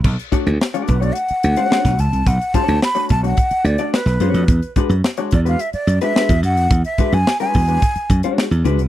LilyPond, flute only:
\new Staff \with { instrumentName = "Flute" } { \time 4/4 \key b \dorian \tempo 4 = 108 r4. b'16 d''16 fis''4. a''8 | fis''8 a''8 b''8 a''16 fis''8. d''8 b'4~ | b'8 r4 d''16 eis''16 e''16 d''8 e''8. fis''8~ | fis''16 e''8 gis''8 gis''4. r4 r16 | }